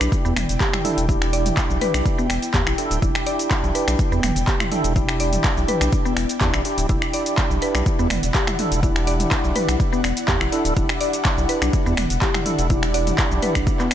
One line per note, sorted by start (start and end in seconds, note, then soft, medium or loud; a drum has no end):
0.00 0.08 B1 medium
0.00 0.33 D4 medium
0.00 0.11 D4 medium
0.00 0.34 E4 medium
0.00 13.94 E4 medium
0.00 0.34 G4 medium
0.00 13.94 D5 medium
0.00 6.88 G5 medium
0.00 finger snap medium
0.00 closed hi-hat medium
0.00 cabasa medium
0.12 kick loud
0.12 closed hi-hat soft
0.12 cabasa medium
0.25 0.32 E2 medium
0.25 0.31 B3 loud
0.25 cabasa soft
0.37 0.45 E1 loud
0.37 finger snap medium
0.37 mid tom medium
0.37 open hi-hat medium
0.49 0.57 E1 medium
0.49 closed hi-hat medium
0.49 cabasa medium
0.60 0.72 G4 loud
0.60 kick loud
0.60 clap loud
0.60 closed hi-hat soft
0.60 cabasa medium
0.73 0.83 E4 medium
0.73 finger snap medium
0.73 mid tom medium
0.73 cabasa soft
0.85 1.06 D4 loud
0.85 1.06 E4 medium
0.85 1.06 A4 loud
0.85 mid tom medium
0.85 open hi-hat medium
0.98 1.51 E1 loud
0.98 closed hi-hat medium
0.98 cabasa medium
1.09 2.27 D4 medium
1.09 2.27 E4 medium
1.09 1.20 E4 medium
1.09 2.27 G4 medium
1.09 kick loud
1.09 closed hi-hat soft
1.09 cabasa medium
1.22 finger snap medium
1.22 cabasa soft
1.33 1.45 D5 loud
1.33 open hi-hat medium
1.46 closed hi-hat medium
1.46 mid tom medium
1.46 cabasa medium
1.57 finger snap medium
1.57 kick loud
1.57 clap medium
1.57 closed hi-hat soft
1.57 cabasa medium
1.70 1.78 B1 loud
1.70 cabasa soft
1.81 1.93 B4 loud
1.81 mid tom medium
1.81 open hi-hat medium
1.94 2.02 B1 medium
1.94 2.05 D4 medium
1.94 finger snap medium
1.94 closed hi-hat medium
1.94 cabasa medium
2.06 kick loud
2.06 closed hi-hat soft
2.06 cabasa medium
2.18 2.25 B3 loud
2.18 cabasa soft
2.30 2.38 E1 medium
2.30 finger snap medium
2.30 open hi-hat loud
2.42 closed hi-hat medium
2.42 cabasa medium
2.54 2.62 E2 loud
2.54 2.66 G4 loud
2.54 kick loud
2.54 clap loud
2.54 closed hi-hat soft
2.54 cabasa medium
2.67 2.74 A1 medium
2.67 2.77 E4 medium
2.67 finger snap loud
2.67 cabasa soft
2.78 3.00 D4 loud
2.78 3.00 E4 medium
2.78 3.00 A4 loud
2.78 open hi-hat medium
2.91 2.98 D1 medium
2.91 closed hi-hat medium
2.91 cabasa medium
3.02 3.11 E1 loud
3.02 4.21 D4 medium
3.02 3.14 E4 medium
3.02 4.21 E4 medium
3.02 4.21 G4 medium
3.02 kick loud
3.02 closed hi-hat soft
3.02 cabasa medium
3.15 finger snap medium
3.15 cabasa soft
3.27 3.38 D5 loud
3.27 open hi-hat medium
3.39 closed hi-hat medium
3.39 cabasa medium
3.51 finger snap medium
3.51 kick loud
3.51 clap medium
3.51 closed hi-hat soft
3.51 cabasa medium
3.63 3.71 B1 loud
3.63 cabasa soft
3.75 3.87 B4 loud
3.75 open hi-hat medium
3.88 3.95 B1 medium
3.88 3.98 D4 medium
3.88 finger snap loud
3.88 closed hi-hat medium
3.88 cabasa medium
3.99 kick loud
3.99 closed hi-hat soft
3.99 cabasa medium
4.12 4.19 E2 medium
4.12 4.18 B3 loud
4.12 cabasa soft
4.23 4.32 E1 loud
4.23 finger snap medium
4.23 mid tom medium
4.23 open hi-hat medium
4.36 4.44 E1 medium
4.36 closed hi-hat medium
4.36 cabasa medium
4.48 4.59 G4 loud
4.48 kick loud
4.48 clap loud
4.48 closed hi-hat soft
4.48 cabasa medium
4.60 4.71 E4 medium
4.60 finger snap medium
4.60 mid tom medium
4.60 cabasa soft
4.71 4.93 D4 loud
4.71 4.93 E4 medium
4.71 4.93 A4 loud
4.71 mid tom medium
4.71 open hi-hat medium
4.84 5.38 E1 medium
4.84 closed hi-hat medium
4.84 cabasa medium
4.96 6.14 D4 medium
4.96 6.14 E4 medium
4.96 5.08 E4 medium
4.96 6.14 G4 medium
4.96 kick loud
4.96 closed hi-hat soft
4.96 cabasa medium
5.09 finger snap medium
5.09 cabasa soft
5.20 5.32 D5 loud
5.20 open hi-hat medium
5.33 closed hi-hat medium
5.33 mid tom medium
5.33 cabasa medium
5.44 finger snap medium
5.44 kick loud
5.44 clap loud
5.44 closed hi-hat soft
5.44 cabasa medium
5.57 5.65 B1 loud
5.57 cabasa soft
5.68 5.80 B4 loud
5.68 mid tom medium
5.68 open hi-hat medium
5.81 5.89 B1 medium
5.81 5.92 D4 medium
5.81 finger snap medium
5.81 closed hi-hat medium
5.81 cabasa medium
5.92 kick loud
5.92 closed hi-hat soft
5.92 cabasa medium
6.05 6.12 B3 loud
6.05 cabasa soft
6.17 6.25 E1 loud
6.17 finger snap medium
6.17 open hi-hat medium
6.29 closed hi-hat medium
6.29 cabasa medium
6.41 6.49 E2 loud
6.41 6.62 D4 medium
6.41 6.62 E4 medium
6.41 6.62 G4 loud
6.41 6.53 G4 loud
6.41 kick loud
6.41 clap loud
6.41 closed hi-hat soft
6.41 cabasa medium
6.54 6.61 A1 medium
6.54 6.64 E4 medium
6.54 finger snap medium
6.54 cabasa soft
6.65 6.87 D4 medium
6.65 6.87 E4 medium
6.65 6.87 G4 medium
6.65 open hi-hat medium
6.78 6.85 D1 loud
6.78 closed hi-hat medium
6.78 cabasa medium
6.89 6.98 E1 loud
6.89 7.01 E4 medium
6.89 13.94 F#5 medium
6.89 kick loud
6.89 closed hi-hat soft
6.89 cabasa medium
7.02 finger snap medium
7.02 cabasa soft
7.13 7.25 D5 loud
7.13 open hi-hat medium
7.26 closed hi-hat medium
7.26 cabasa medium
7.38 finger snap medium
7.38 kick loud
7.38 clap loud
7.38 closed hi-hat soft
7.38 cabasa medium
7.50 7.58 B1 loud
7.50 cabasa soft
7.62 7.74 B4 loud
7.62 open hi-hat medium
7.75 7.82 B1 medium
7.75 7.85 D4 medium
7.75 finger snap medium
7.75 closed hi-hat medium
7.75 cabasa medium
7.86 kick loud
7.86 closed hi-hat soft
7.86 cabasa medium
7.99 8.07 E2 medium
7.99 8.05 B3 loud
7.99 cabasa soft
8.10 8.19 E1 loud
8.10 finger snap medium
8.10 mid tom medium
8.10 open hi-hat medium
8.23 8.31 E1 medium
8.23 closed hi-hat medium
8.23 cabasa medium
8.35 8.46 G4 loud
8.35 kick loud
8.35 clap loud
8.35 closed hi-hat soft
8.35 cabasa medium
8.47 8.58 E4 medium
8.47 finger snap medium
8.47 mid tom medium
8.47 cabasa soft
8.59 8.80 D4 loud
8.59 8.80 E4 medium
8.59 8.80 A4 loud
8.59 mid tom medium
8.59 open hi-hat medium
8.72 9.25 E1 medium
8.72 closed hi-hat medium
8.72 cabasa medium
8.83 10.01 D4 medium
8.83 8.95 E4 medium
8.83 10.01 E4 medium
8.83 10.01 G4 medium
8.83 kick loud
8.83 closed hi-hat soft
8.83 cabasa medium
8.96 finger snap medium
8.96 cabasa soft
9.07 9.19 D5 loud
9.07 open hi-hat medium
9.20 closed hi-hat medium
9.20 mid tom medium
9.20 cabasa medium
9.31 finger snap medium
9.31 kick loud
9.31 clap loud
9.31 closed hi-hat soft
9.31 cabasa medium
9.44 9.52 B1 loud
9.44 cabasa soft
9.56 9.67 B4 loud
9.56 mid tom medium
9.56 open hi-hat medium
9.68 9.76 B1 medium
9.68 9.79 D4 medium
9.68 finger snap medium
9.68 closed hi-hat medium
9.68 cabasa medium
9.80 kick loud
9.80 closed hi-hat soft
9.80 cabasa medium
9.93 9.99 B3 loud
9.93 cabasa soft
10.04 10.13 E1 loud
10.04 finger snap medium
10.04 open hi-hat medium
10.17 closed hi-hat medium
10.17 cabasa medium
10.28 10.37 E2 loud
10.28 10.40 G4 loud
10.28 kick loud
10.28 clap loud
10.28 closed hi-hat soft
10.28 cabasa medium
10.41 10.48 A1 medium
10.41 10.51 E4 medium
10.41 finger snap medium
10.41 cabasa soft
10.52 10.74 D4 loud
10.52 10.74 E4 medium
10.52 10.74 A4 loud
10.52 open hi-hat medium
10.65 10.73 D1 loud
10.65 closed hi-hat medium
10.65 cabasa medium
10.77 10.85 E1 loud
10.77 10.88 E4 medium
10.77 kick loud
10.77 closed hi-hat soft
10.77 cabasa medium
10.89 finger snap medium
10.89 cabasa soft
11.01 11.12 D5 loud
11.01 open hi-hat medium
11.13 closed hi-hat medium
11.13 cabasa medium
11.25 finger snap medium
11.25 kick loud
11.25 clap loud
11.25 closed hi-hat soft
11.25 cabasa medium
11.38 11.45 B1 loud
11.38 cabasa soft
11.49 11.61 B4 loud
11.49 open hi-hat medium
11.62 11.69 B1 medium
11.62 11.72 D4 medium
11.62 finger snap medium
11.62 closed hi-hat medium
11.62 cabasa medium
11.73 kick loud
11.73 closed hi-hat soft
11.73 cabasa medium
11.86 11.94 E2 medium
11.86 11.92 B3 loud
11.86 cabasa soft
11.97 12.06 E1 loud
11.97 finger snap medium
11.97 mid tom medium
11.97 open hi-hat loud
12.10 12.18 E1 medium
12.10 closed hi-hat medium
12.10 cabasa medium
12.22 12.33 G4 loud
12.22 kick loud
12.22 clap loud
12.22 closed hi-hat soft
12.22 cabasa medium
12.34 12.45 E4 medium
12.34 finger snap medium
12.34 mid tom medium
12.34 cabasa soft
12.46 12.67 D4 loud
12.46 12.67 E4 medium
12.46 12.67 A4 loud
12.46 mid tom medium
12.46 open hi-hat medium
12.59 13.12 E1 loud
12.59 closed hi-hat medium
12.59 cabasa medium
12.70 13.88 D4 medium
12.70 13.88 E4 medium
12.70 12.82 E4 medium
12.70 13.88 G4 medium
12.70 kick loud
12.70 closed hi-hat soft
12.70 cabasa medium
12.83 finger snap medium
12.83 cabasa soft
12.94 13.06 D5 loud
12.94 open hi-hat loud
13.07 closed hi-hat medium
13.07 mid tom medium
13.07 cabasa medium
13.18 finger snap medium
13.18 kick loud
13.18 clap loud
13.18 closed hi-hat soft
13.18 cabasa medium
13.31 13.39 B1 loud
13.31 cabasa soft
13.42 13.54 B4 loud
13.42 mid tom medium
13.42 open hi-hat medium
13.55 13.63 B1 medium
13.55 13.66 D4 medium
13.55 finger snap medium
13.55 kick medium
13.55 closed hi-hat medium
13.55 cabasa medium
13.67 kick loud
13.67 closed hi-hat soft
13.67 cabasa medium
13.80 13.86 B3 loud
13.80 clap soft
13.80 cabasa soft
13.91 finger snap medium
13.91 open hi-hat loud